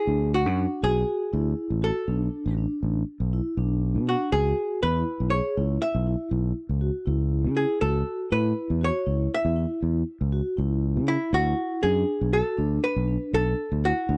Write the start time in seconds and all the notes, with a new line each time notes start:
Already playing: G#4
0.06 D2 D4
0.34 F#4
0.46 F#2
0.56 D4
0.82 B1 F#4 G#4
1.33 D2 E4
1.70 A1
1.82 F#4 A4
2.08 B1 D4
2.46 A1
2.57 D4
2.83 A1
3.20 B1
3.33 E4
3.57 B1 D4
3.95 B2
4.07 D4 F#4
4.32 C#2 F#4 G#4
4.83 E2 E4 B4
5.20 B1
5.30 G#4 C#5
5.57 C#2 E4
5.82 E5
5.95 B1
6.07 E4
6.31 B1
6.69 C#2
6.81 F#4
7.06 C#2 E4
7.44 C#3
7.56 E4 G#4
7.81 C#2 F#4 A4
8.31 A2 E4 B4
8.70 E2
8.81 F#4 C#5
9.06 C#2 E4
9.34 E5
9.45 E2
9.56 E4
9.82 E2
10.21 C#2
10.33 F#4
10.57 C#2 E4
10.96 C#3
11.07 E4
11.33 D2 E4 F#4
11.82 F#2 D4 G#4
12.21 B1
12.33 F#4 A4
12.57 D2 D4
12.84 B4
12.96 B1
13.08 D4
13.33 B1 A4
13.72 D2
13.84 E4 F#4
14.09 D2 D4